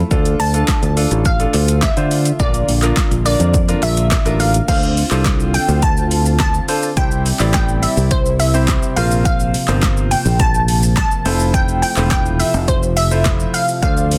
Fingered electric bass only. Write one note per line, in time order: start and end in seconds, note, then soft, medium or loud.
0.11 0.34 D2 loud
0.40 0.62 D2 medium
0.82 1.05 D2 medium
1.11 1.45 A1 medium
1.54 1.88 D2 loud
1.97 2.31 D3 medium
2.40 2.62 A#1 loud
2.68 2.91 A#1 medium
3.11 3.34 A#1 medium
3.40 3.74 F2 medium
3.83 4.16 A#1 loud
4.25 4.59 A1 medium
4.68 5.02 D2 loud
5.11 5.56 C2 medium
5.68 6.58 D2 loud
6.97 7.31 C2 loud
7.40 7.85 A1 medium
7.97 8.76 C2 loud
8.97 9.53 A#1 loud
9.68 10.13 G1 medium
10.25 11.04 A#1 loud
11.26 11.82 F1 loud
11.97 12.42 E1 medium
12.54 13.44 F1 loud
13.83 14.16 D2 loud